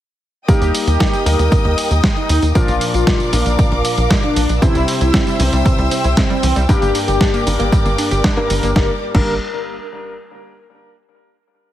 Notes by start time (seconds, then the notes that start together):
0.48 G3 A#3 D#4 G4 A#4 D#5 G5 D#6, kick, closed hi-hat, tambourine
0.61 D#2, closed hi-hat, tambourine
0.75 open hi-hat, tambourine
0.87 D#2 G4, closed hi-hat, tambourine
1.00 kick, snare, closed hi-hat, tambourine
1.13 closed hi-hat, tambourine
1.26 D#2 G3 A#3 D#4 A#4, open hi-hat, tambourine
1.39 D#2, closed hi-hat, tambourine
1.52 kick, closed hi-hat, tambourine
1.65 D#2, closed hi-hat
1.78 open hi-hat, tambourine
1.91 D#2, closed hi-hat, tambourine
2.04 kick, snare, closed hi-hat, tambourine
2.17 D#4, closed hi-hat
2.29 D#2, open hi-hat, tambourine
2.42 D#2, closed hi-hat, tambourine
2.55 A#2 F3 A#3 D4 F4 A#4 D5 F5 D6, kick, closed hi-hat, tambourine
2.68 A#1, closed hi-hat, tambourine
2.81 open hi-hat, tambourine
2.94 A#1 F4, closed hi-hat, tambourine
3.07 kick, snare, closed hi-hat, tambourine
3.20 closed hi-hat, tambourine
3.33 A#1 A#2 F3 A#3 D4 A#4, open hi-hat, tambourine
3.46 A#1, closed hi-hat, tambourine
3.59 kick, closed hi-hat, tambourine
3.72 A#1, closed hi-hat
3.85 open hi-hat, tambourine
3.98 A#1, closed hi-hat, tambourine
4.10 kick, snare, closed hi-hat, tambourine
4.23 D4, closed hi-hat
4.36 A#1, open hi-hat, tambourine
4.49 A#1, closed hi-hat, tambourine
4.62 C3 E3 G3 C4 E4 C5 E5 G5 E6, kick, closed hi-hat, tambourine
4.75 C2 G3, closed hi-hat, tambourine
4.88 C4, open hi-hat, tambourine
5.01 C2 E4, closed hi-hat, tambourine
5.14 C4, kick, snare, closed hi-hat, tambourine
5.27 G3, closed hi-hat, tambourine
5.39 C2 C3 E3 G3 C4 E4 C5, open hi-hat, tambourine
5.53 C2 G3, closed hi-hat, tambourine
5.66 E3, kick, closed hi-hat, tambourine
5.78 C2 G3, closed hi-hat
5.91 C4, open hi-hat, tambourine
6.04 C2 E4, closed hi-hat, tambourine
6.17 C4, kick, snare, closed hi-hat, tambourine
6.30 G3 C4, closed hi-hat
6.43 C2 E3, open hi-hat, tambourine
6.56 C2 G3, closed hi-hat, tambourine
6.69 G2 G3 A#3 D4 G4 A#4 D5 D6, kick, closed hi-hat, tambourine
6.82 G1 A#3, closed hi-hat, tambourine
6.95 D4, open hi-hat, tambourine
7.08 G1 G4, closed hi-hat, tambourine
7.21 D4, kick, snare, closed hi-hat, tambourine
7.34 A#3, closed hi-hat, tambourine
7.46 G1 G2 G3 A#3 D4 A#4, open hi-hat, tambourine
7.59 G1 A#3, closed hi-hat, tambourine
7.72 G3, kick, closed hi-hat, tambourine
7.85 G1 A#3, closed hi-hat, tambourine
7.98 D4, open hi-hat, tambourine
8.11 G1 G4, closed hi-hat, tambourine
8.24 D4, kick, snare, closed hi-hat, tambourine
8.37 G2 G3 A#3 D4 A#4, closed hi-hat
8.50 G1 G3, open hi-hat, tambourine
8.63 G1 A#3, closed hi-hat, tambourine
8.76 G1 G3 A#3 D4 G4 A#4 D5 D6, kick, snare
9.15 G1 G3 A#3 D4 A#4, kick, crash